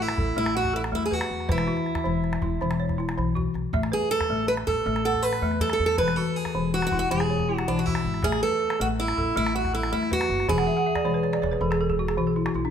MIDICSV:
0, 0, Header, 1, 5, 480
1, 0, Start_track
1, 0, Tempo, 374766
1, 1911, Time_signature, 12, 3, 24, 8
1, 16271, End_track
2, 0, Start_track
2, 0, Title_t, "Balafon"
2, 0, Program_c, 0, 12
2, 0, Note_on_c, 0, 57, 75
2, 231, Note_off_c, 0, 57, 0
2, 232, Note_on_c, 0, 69, 61
2, 468, Note_on_c, 0, 57, 77
2, 706, Note_on_c, 0, 78, 63
2, 925, Note_off_c, 0, 69, 0
2, 940, Note_on_c, 0, 69, 63
2, 950, Note_off_c, 0, 57, 0
2, 1179, Note_on_c, 0, 57, 78
2, 1422, Note_on_c, 0, 71, 59
2, 1429, Note_off_c, 0, 78, 0
2, 1665, Note_off_c, 0, 57, 0
2, 1666, Note_off_c, 0, 69, 0
2, 1891, Note_off_c, 0, 71, 0
2, 1905, Note_on_c, 0, 52, 79
2, 1907, Note_on_c, 0, 71, 67
2, 2140, Note_on_c, 0, 66, 63
2, 2388, Note_off_c, 0, 52, 0
2, 2618, Note_on_c, 0, 52, 74
2, 2629, Note_off_c, 0, 71, 0
2, 2865, Note_off_c, 0, 66, 0
2, 3104, Note_off_c, 0, 52, 0
2, 3104, Note_on_c, 0, 64, 60
2, 3345, Note_on_c, 0, 52, 73
2, 3581, Note_on_c, 0, 73, 67
2, 3806, Note_off_c, 0, 64, 0
2, 3821, Note_on_c, 0, 64, 64
2, 3828, Note_off_c, 0, 52, 0
2, 4064, Note_on_c, 0, 52, 74
2, 4295, Note_on_c, 0, 66, 64
2, 4306, Note_off_c, 0, 73, 0
2, 4546, Note_off_c, 0, 64, 0
2, 4547, Note_off_c, 0, 52, 0
2, 4784, Note_on_c, 0, 57, 75
2, 4785, Note_on_c, 0, 76, 69
2, 5018, Note_on_c, 0, 71, 63
2, 5022, Note_off_c, 0, 66, 0
2, 5267, Note_off_c, 0, 57, 0
2, 5505, Note_on_c, 0, 57, 76
2, 5507, Note_off_c, 0, 76, 0
2, 5744, Note_off_c, 0, 71, 0
2, 5987, Note_off_c, 0, 57, 0
2, 5993, Note_on_c, 0, 69, 61
2, 6224, Note_on_c, 0, 57, 77
2, 6467, Note_on_c, 0, 78, 68
2, 6691, Note_off_c, 0, 69, 0
2, 6706, Note_on_c, 0, 69, 66
2, 6707, Note_off_c, 0, 57, 0
2, 6945, Note_on_c, 0, 57, 81
2, 7184, Note_on_c, 0, 71, 62
2, 7188, Note_off_c, 0, 78, 0
2, 7427, Note_off_c, 0, 57, 0
2, 7428, Note_off_c, 0, 69, 0
2, 7653, Note_off_c, 0, 71, 0
2, 7667, Note_on_c, 0, 52, 83
2, 7668, Note_on_c, 0, 71, 72
2, 7904, Note_on_c, 0, 66, 66
2, 8148, Note_off_c, 0, 52, 0
2, 8385, Note_on_c, 0, 52, 80
2, 8389, Note_off_c, 0, 71, 0
2, 8627, Note_off_c, 0, 66, 0
2, 8867, Note_off_c, 0, 52, 0
2, 8869, Note_on_c, 0, 64, 63
2, 9107, Note_on_c, 0, 52, 81
2, 9346, Note_on_c, 0, 73, 64
2, 9577, Note_off_c, 0, 64, 0
2, 9588, Note_off_c, 0, 52, 0
2, 9592, Note_on_c, 0, 64, 66
2, 9835, Note_on_c, 0, 52, 84
2, 10068, Note_off_c, 0, 73, 0
2, 10080, Note_on_c, 0, 66, 68
2, 10312, Note_off_c, 0, 64, 0
2, 10313, Note_off_c, 0, 52, 0
2, 10551, Note_on_c, 0, 76, 68
2, 10556, Note_on_c, 0, 57, 79
2, 10792, Note_on_c, 0, 71, 67
2, 10795, Note_off_c, 0, 66, 0
2, 11033, Note_off_c, 0, 57, 0
2, 11266, Note_on_c, 0, 57, 78
2, 11271, Note_off_c, 0, 76, 0
2, 11512, Note_off_c, 0, 71, 0
2, 11749, Note_off_c, 0, 57, 0
2, 11750, Note_on_c, 0, 69, 63
2, 11986, Note_on_c, 0, 57, 85
2, 12227, Note_on_c, 0, 78, 63
2, 12453, Note_off_c, 0, 69, 0
2, 12469, Note_off_c, 0, 57, 0
2, 12469, Note_on_c, 0, 69, 61
2, 12708, Note_on_c, 0, 57, 86
2, 12950, Note_off_c, 0, 78, 0
2, 12952, Note_on_c, 0, 71, 62
2, 13191, Note_off_c, 0, 57, 0
2, 13191, Note_off_c, 0, 69, 0
2, 13429, Note_on_c, 0, 80, 61
2, 13430, Note_on_c, 0, 52, 84
2, 13549, Note_on_c, 0, 78, 67
2, 13654, Note_off_c, 0, 80, 0
2, 13663, Note_on_c, 0, 76, 74
2, 13673, Note_off_c, 0, 71, 0
2, 13774, Note_off_c, 0, 78, 0
2, 13790, Note_on_c, 0, 78, 68
2, 13891, Note_off_c, 0, 76, 0
2, 13912, Note_off_c, 0, 52, 0
2, 13915, Note_on_c, 0, 76, 70
2, 14015, Note_off_c, 0, 78, 0
2, 14029, Note_on_c, 0, 74, 70
2, 14137, Note_off_c, 0, 76, 0
2, 14149, Note_on_c, 0, 52, 72
2, 14151, Note_on_c, 0, 73, 68
2, 14255, Note_off_c, 0, 74, 0
2, 14270, Note_on_c, 0, 71, 65
2, 14371, Note_off_c, 0, 73, 0
2, 14386, Note_on_c, 0, 73, 70
2, 14495, Note_off_c, 0, 71, 0
2, 14511, Note_on_c, 0, 74, 73
2, 14613, Note_off_c, 0, 73, 0
2, 14628, Note_on_c, 0, 73, 66
2, 14632, Note_off_c, 0, 52, 0
2, 14735, Note_off_c, 0, 74, 0
2, 14749, Note_on_c, 0, 71, 63
2, 14854, Note_off_c, 0, 73, 0
2, 14875, Note_on_c, 0, 52, 74
2, 14876, Note_on_c, 0, 69, 68
2, 14975, Note_off_c, 0, 71, 0
2, 14995, Note_on_c, 0, 68, 71
2, 15098, Note_off_c, 0, 69, 0
2, 15123, Note_on_c, 0, 69, 72
2, 15218, Note_off_c, 0, 68, 0
2, 15236, Note_on_c, 0, 68, 68
2, 15342, Note_off_c, 0, 69, 0
2, 15355, Note_off_c, 0, 52, 0
2, 15359, Note_on_c, 0, 66, 71
2, 15458, Note_off_c, 0, 68, 0
2, 15475, Note_on_c, 0, 68, 67
2, 15580, Note_off_c, 0, 66, 0
2, 15593, Note_on_c, 0, 52, 79
2, 15598, Note_on_c, 0, 66, 67
2, 15698, Note_off_c, 0, 68, 0
2, 15715, Note_on_c, 0, 68, 64
2, 15819, Note_off_c, 0, 66, 0
2, 15834, Note_on_c, 0, 64, 69
2, 15937, Note_off_c, 0, 68, 0
2, 15958, Note_on_c, 0, 66, 65
2, 16057, Note_off_c, 0, 64, 0
2, 16074, Note_off_c, 0, 52, 0
2, 16083, Note_on_c, 0, 64, 63
2, 16179, Note_off_c, 0, 66, 0
2, 16200, Note_on_c, 0, 62, 69
2, 16271, Note_off_c, 0, 62, 0
2, 16271, Note_off_c, 0, 64, 0
2, 16271, End_track
3, 0, Start_track
3, 0, Title_t, "Steel-string acoustic guitar"
3, 0, Program_c, 1, 25
3, 22, Note_on_c, 1, 64, 92
3, 468, Note_off_c, 1, 64, 0
3, 483, Note_on_c, 1, 64, 85
3, 701, Note_off_c, 1, 64, 0
3, 724, Note_on_c, 1, 66, 84
3, 965, Note_off_c, 1, 66, 0
3, 972, Note_on_c, 1, 64, 77
3, 1036, Note_off_c, 1, 64, 0
3, 1217, Note_on_c, 1, 64, 80
3, 1347, Note_off_c, 1, 64, 0
3, 1352, Note_on_c, 1, 68, 64
3, 1450, Note_off_c, 1, 68, 0
3, 1450, Note_on_c, 1, 66, 94
3, 1921, Note_off_c, 1, 66, 0
3, 1940, Note_on_c, 1, 64, 81
3, 3794, Note_off_c, 1, 64, 0
3, 5037, Note_on_c, 1, 68, 86
3, 5259, Note_off_c, 1, 68, 0
3, 5264, Note_on_c, 1, 69, 106
3, 5735, Note_off_c, 1, 69, 0
3, 5740, Note_on_c, 1, 71, 91
3, 5806, Note_off_c, 1, 71, 0
3, 5981, Note_on_c, 1, 69, 90
3, 6456, Note_off_c, 1, 69, 0
3, 6471, Note_on_c, 1, 69, 83
3, 6692, Note_off_c, 1, 69, 0
3, 6692, Note_on_c, 1, 71, 95
3, 7181, Note_off_c, 1, 71, 0
3, 7186, Note_on_c, 1, 69, 97
3, 7324, Note_off_c, 1, 69, 0
3, 7339, Note_on_c, 1, 69, 81
3, 7490, Note_off_c, 1, 69, 0
3, 7506, Note_on_c, 1, 69, 93
3, 7656, Note_off_c, 1, 69, 0
3, 7661, Note_on_c, 1, 71, 99
3, 7889, Note_off_c, 1, 71, 0
3, 7889, Note_on_c, 1, 69, 94
3, 8147, Note_off_c, 1, 69, 0
3, 8147, Note_on_c, 1, 68, 100
3, 8626, Note_off_c, 1, 68, 0
3, 8631, Note_on_c, 1, 66, 89
3, 8778, Note_off_c, 1, 66, 0
3, 8793, Note_on_c, 1, 66, 85
3, 8937, Note_off_c, 1, 66, 0
3, 8952, Note_on_c, 1, 66, 92
3, 9103, Note_off_c, 1, 66, 0
3, 9109, Note_on_c, 1, 68, 90
3, 9685, Note_off_c, 1, 68, 0
3, 9685, Note_on_c, 1, 66, 90
3, 9837, Note_on_c, 1, 62, 74
3, 9851, Note_off_c, 1, 66, 0
3, 9972, Note_off_c, 1, 62, 0
3, 9976, Note_on_c, 1, 66, 64
3, 10061, Note_off_c, 1, 66, 0
3, 10061, Note_on_c, 1, 64, 84
3, 10546, Note_off_c, 1, 64, 0
3, 10556, Note_on_c, 1, 68, 96
3, 10788, Note_off_c, 1, 68, 0
3, 10794, Note_on_c, 1, 69, 94
3, 11280, Note_off_c, 1, 69, 0
3, 11285, Note_on_c, 1, 66, 89
3, 11349, Note_off_c, 1, 66, 0
3, 11522, Note_on_c, 1, 64, 86
3, 11988, Note_off_c, 1, 64, 0
3, 12004, Note_on_c, 1, 64, 87
3, 12233, Note_off_c, 1, 64, 0
3, 12239, Note_on_c, 1, 66, 76
3, 12476, Note_off_c, 1, 66, 0
3, 12481, Note_on_c, 1, 64, 78
3, 12697, Note_off_c, 1, 64, 0
3, 12713, Note_on_c, 1, 64, 81
3, 12960, Note_off_c, 1, 64, 0
3, 12972, Note_on_c, 1, 66, 87
3, 13433, Note_off_c, 1, 66, 0
3, 13438, Note_on_c, 1, 68, 84
3, 15305, Note_off_c, 1, 68, 0
3, 16271, End_track
4, 0, Start_track
4, 0, Title_t, "Upright bass"
4, 0, Program_c, 2, 32
4, 0, Note_on_c, 2, 33, 86
4, 211, Note_off_c, 2, 33, 0
4, 241, Note_on_c, 2, 33, 77
4, 465, Note_off_c, 2, 33, 0
4, 470, Note_on_c, 2, 33, 97
4, 1155, Note_off_c, 2, 33, 0
4, 1186, Note_on_c, 2, 40, 79
4, 1645, Note_off_c, 2, 40, 0
4, 1664, Note_on_c, 2, 40, 84
4, 1895, Note_off_c, 2, 40, 0
4, 1904, Note_on_c, 2, 28, 105
4, 2135, Note_off_c, 2, 28, 0
4, 2630, Note_on_c, 2, 28, 89
4, 3086, Note_off_c, 2, 28, 0
4, 3108, Note_on_c, 2, 28, 78
4, 3337, Note_off_c, 2, 28, 0
4, 3356, Note_on_c, 2, 28, 93
4, 4037, Note_off_c, 2, 28, 0
4, 4067, Note_on_c, 2, 35, 82
4, 4524, Note_off_c, 2, 35, 0
4, 4536, Note_on_c, 2, 35, 75
4, 4771, Note_off_c, 2, 35, 0
4, 4777, Note_on_c, 2, 33, 100
4, 5011, Note_off_c, 2, 33, 0
4, 5505, Note_on_c, 2, 33, 87
4, 5963, Note_off_c, 2, 33, 0
4, 5989, Note_on_c, 2, 33, 78
4, 6214, Note_off_c, 2, 33, 0
4, 6222, Note_on_c, 2, 33, 98
4, 6909, Note_off_c, 2, 33, 0
4, 6939, Note_on_c, 2, 40, 83
4, 7400, Note_off_c, 2, 40, 0
4, 7423, Note_on_c, 2, 40, 84
4, 7649, Note_off_c, 2, 40, 0
4, 7656, Note_on_c, 2, 28, 96
4, 7890, Note_off_c, 2, 28, 0
4, 8382, Note_on_c, 2, 28, 82
4, 8842, Note_off_c, 2, 28, 0
4, 8868, Note_on_c, 2, 28, 83
4, 9097, Note_off_c, 2, 28, 0
4, 9103, Note_on_c, 2, 28, 98
4, 9790, Note_off_c, 2, 28, 0
4, 9824, Note_on_c, 2, 35, 78
4, 10283, Note_off_c, 2, 35, 0
4, 10305, Note_on_c, 2, 32, 90
4, 10536, Note_off_c, 2, 32, 0
4, 10546, Note_on_c, 2, 33, 98
4, 10776, Note_off_c, 2, 33, 0
4, 11273, Note_on_c, 2, 33, 90
4, 11728, Note_off_c, 2, 33, 0
4, 11754, Note_on_c, 2, 33, 81
4, 11981, Note_off_c, 2, 33, 0
4, 11994, Note_on_c, 2, 33, 96
4, 12677, Note_off_c, 2, 33, 0
4, 12712, Note_on_c, 2, 40, 78
4, 13168, Note_off_c, 2, 40, 0
4, 13184, Note_on_c, 2, 30, 84
4, 13416, Note_off_c, 2, 30, 0
4, 13433, Note_on_c, 2, 28, 100
4, 13661, Note_off_c, 2, 28, 0
4, 14153, Note_on_c, 2, 28, 86
4, 14609, Note_off_c, 2, 28, 0
4, 14632, Note_on_c, 2, 28, 76
4, 14861, Note_off_c, 2, 28, 0
4, 14866, Note_on_c, 2, 28, 99
4, 15554, Note_off_c, 2, 28, 0
4, 15592, Note_on_c, 2, 35, 79
4, 16048, Note_off_c, 2, 35, 0
4, 16066, Note_on_c, 2, 35, 81
4, 16271, Note_off_c, 2, 35, 0
4, 16271, End_track
5, 0, Start_track
5, 0, Title_t, "Calabash"
5, 108, Note_on_c, 9, 38, 55
5, 230, Note_on_c, 9, 36, 68
5, 237, Note_off_c, 9, 38, 0
5, 358, Note_off_c, 9, 36, 0
5, 593, Note_on_c, 9, 38, 58
5, 721, Note_off_c, 9, 38, 0
5, 830, Note_on_c, 9, 36, 55
5, 830, Note_on_c, 9, 38, 21
5, 958, Note_off_c, 9, 36, 0
5, 958, Note_off_c, 9, 38, 0
5, 1078, Note_on_c, 9, 38, 52
5, 1206, Note_off_c, 9, 38, 0
5, 1433, Note_on_c, 9, 36, 64
5, 1549, Note_on_c, 9, 38, 58
5, 1561, Note_off_c, 9, 36, 0
5, 1677, Note_off_c, 9, 38, 0
5, 1796, Note_on_c, 9, 38, 23
5, 1910, Note_off_c, 9, 38, 0
5, 1910, Note_on_c, 9, 36, 71
5, 1910, Note_on_c, 9, 38, 21
5, 2023, Note_off_c, 9, 38, 0
5, 2023, Note_on_c, 9, 38, 56
5, 2038, Note_off_c, 9, 36, 0
5, 2147, Note_off_c, 9, 38, 0
5, 2147, Note_on_c, 9, 38, 24
5, 2266, Note_off_c, 9, 38, 0
5, 2266, Note_on_c, 9, 38, 21
5, 2385, Note_off_c, 9, 38, 0
5, 2385, Note_on_c, 9, 38, 23
5, 2500, Note_off_c, 9, 38, 0
5, 2500, Note_on_c, 9, 36, 58
5, 2500, Note_on_c, 9, 38, 53
5, 2628, Note_off_c, 9, 36, 0
5, 2628, Note_off_c, 9, 38, 0
5, 2867, Note_on_c, 9, 38, 22
5, 2982, Note_off_c, 9, 38, 0
5, 2982, Note_on_c, 9, 38, 47
5, 3097, Note_on_c, 9, 36, 65
5, 3110, Note_off_c, 9, 38, 0
5, 3225, Note_off_c, 9, 36, 0
5, 3344, Note_on_c, 9, 38, 21
5, 3467, Note_off_c, 9, 38, 0
5, 3467, Note_on_c, 9, 38, 51
5, 3595, Note_off_c, 9, 38, 0
5, 3706, Note_on_c, 9, 36, 51
5, 3706, Note_on_c, 9, 38, 20
5, 3834, Note_off_c, 9, 36, 0
5, 3834, Note_off_c, 9, 38, 0
5, 3841, Note_on_c, 9, 38, 23
5, 3954, Note_off_c, 9, 38, 0
5, 3954, Note_on_c, 9, 38, 47
5, 4081, Note_off_c, 9, 38, 0
5, 4081, Note_on_c, 9, 38, 21
5, 4209, Note_off_c, 9, 38, 0
5, 4311, Note_on_c, 9, 36, 62
5, 4440, Note_off_c, 9, 36, 0
5, 4552, Note_on_c, 9, 38, 19
5, 4680, Note_off_c, 9, 38, 0
5, 4790, Note_on_c, 9, 36, 64
5, 4790, Note_on_c, 9, 38, 19
5, 4911, Note_off_c, 9, 38, 0
5, 4911, Note_on_c, 9, 38, 50
5, 4918, Note_off_c, 9, 36, 0
5, 5039, Note_off_c, 9, 38, 0
5, 5387, Note_on_c, 9, 36, 48
5, 5387, Note_on_c, 9, 38, 48
5, 5515, Note_off_c, 9, 36, 0
5, 5515, Note_off_c, 9, 38, 0
5, 5858, Note_on_c, 9, 38, 45
5, 5986, Note_off_c, 9, 38, 0
5, 5988, Note_on_c, 9, 36, 64
5, 6116, Note_off_c, 9, 36, 0
5, 6353, Note_on_c, 9, 38, 45
5, 6481, Note_off_c, 9, 38, 0
5, 6584, Note_on_c, 9, 36, 46
5, 6584, Note_on_c, 9, 38, 17
5, 6712, Note_off_c, 9, 36, 0
5, 6712, Note_off_c, 9, 38, 0
5, 6822, Note_on_c, 9, 38, 41
5, 6950, Note_off_c, 9, 38, 0
5, 7061, Note_on_c, 9, 38, 19
5, 7177, Note_on_c, 9, 36, 52
5, 7190, Note_off_c, 9, 38, 0
5, 7295, Note_on_c, 9, 38, 49
5, 7306, Note_off_c, 9, 36, 0
5, 7423, Note_off_c, 9, 38, 0
5, 7543, Note_on_c, 9, 38, 20
5, 7656, Note_off_c, 9, 38, 0
5, 7656, Note_on_c, 9, 36, 57
5, 7656, Note_on_c, 9, 38, 18
5, 7784, Note_off_c, 9, 36, 0
5, 7784, Note_off_c, 9, 38, 0
5, 7784, Note_on_c, 9, 38, 43
5, 7912, Note_off_c, 9, 38, 0
5, 8263, Note_on_c, 9, 36, 44
5, 8263, Note_on_c, 9, 38, 48
5, 8391, Note_off_c, 9, 36, 0
5, 8391, Note_off_c, 9, 38, 0
5, 8739, Note_on_c, 9, 38, 49
5, 8855, Note_on_c, 9, 36, 63
5, 8867, Note_off_c, 9, 38, 0
5, 8983, Note_off_c, 9, 36, 0
5, 9224, Note_on_c, 9, 38, 49
5, 9353, Note_off_c, 9, 38, 0
5, 9469, Note_on_c, 9, 36, 49
5, 9469, Note_on_c, 9, 38, 21
5, 9597, Note_off_c, 9, 36, 0
5, 9597, Note_off_c, 9, 38, 0
5, 9715, Note_on_c, 9, 38, 49
5, 9843, Note_off_c, 9, 38, 0
5, 9960, Note_on_c, 9, 38, 22
5, 10083, Note_on_c, 9, 36, 70
5, 10088, Note_off_c, 9, 38, 0
5, 10183, Note_on_c, 9, 38, 55
5, 10211, Note_off_c, 9, 36, 0
5, 10311, Note_off_c, 9, 38, 0
5, 10427, Note_on_c, 9, 38, 25
5, 10536, Note_off_c, 9, 38, 0
5, 10536, Note_on_c, 9, 36, 75
5, 10536, Note_on_c, 9, 38, 24
5, 10661, Note_off_c, 9, 38, 0
5, 10661, Note_on_c, 9, 38, 57
5, 10664, Note_off_c, 9, 36, 0
5, 10789, Note_off_c, 9, 38, 0
5, 11146, Note_on_c, 9, 38, 58
5, 11274, Note_off_c, 9, 38, 0
5, 11634, Note_on_c, 9, 38, 51
5, 11757, Note_on_c, 9, 36, 67
5, 11762, Note_off_c, 9, 38, 0
5, 11885, Note_off_c, 9, 36, 0
5, 12123, Note_on_c, 9, 38, 55
5, 12251, Note_off_c, 9, 38, 0
5, 12358, Note_on_c, 9, 36, 50
5, 12358, Note_on_c, 9, 38, 20
5, 12486, Note_off_c, 9, 36, 0
5, 12486, Note_off_c, 9, 38, 0
5, 12596, Note_on_c, 9, 38, 48
5, 12724, Note_off_c, 9, 38, 0
5, 12841, Note_on_c, 9, 38, 21
5, 12958, Note_on_c, 9, 36, 63
5, 12969, Note_off_c, 9, 38, 0
5, 13075, Note_on_c, 9, 38, 52
5, 13086, Note_off_c, 9, 36, 0
5, 13203, Note_off_c, 9, 38, 0
5, 13319, Note_on_c, 9, 38, 21
5, 13430, Note_off_c, 9, 38, 0
5, 13430, Note_on_c, 9, 36, 62
5, 13430, Note_on_c, 9, 38, 19
5, 13551, Note_off_c, 9, 38, 0
5, 13551, Note_on_c, 9, 38, 51
5, 13558, Note_off_c, 9, 36, 0
5, 13679, Note_off_c, 9, 38, 0
5, 14031, Note_on_c, 9, 36, 48
5, 14031, Note_on_c, 9, 38, 47
5, 14157, Note_off_c, 9, 38, 0
5, 14157, Note_on_c, 9, 38, 19
5, 14159, Note_off_c, 9, 36, 0
5, 14271, Note_off_c, 9, 38, 0
5, 14271, Note_on_c, 9, 38, 19
5, 14393, Note_off_c, 9, 38, 0
5, 14393, Note_on_c, 9, 38, 20
5, 14515, Note_off_c, 9, 38, 0
5, 14515, Note_on_c, 9, 38, 49
5, 14643, Note_off_c, 9, 38, 0
5, 14644, Note_on_c, 9, 36, 69
5, 14644, Note_on_c, 9, 38, 21
5, 14767, Note_off_c, 9, 38, 0
5, 14767, Note_on_c, 9, 38, 20
5, 14772, Note_off_c, 9, 36, 0
5, 14895, Note_off_c, 9, 38, 0
5, 15008, Note_on_c, 9, 38, 49
5, 15136, Note_off_c, 9, 38, 0
5, 15239, Note_on_c, 9, 36, 49
5, 15367, Note_off_c, 9, 36, 0
5, 15478, Note_on_c, 9, 38, 48
5, 15606, Note_off_c, 9, 38, 0
5, 15956, Note_on_c, 9, 38, 49
5, 16084, Note_off_c, 9, 38, 0
5, 16202, Note_on_c, 9, 38, 20
5, 16271, Note_off_c, 9, 38, 0
5, 16271, End_track
0, 0, End_of_file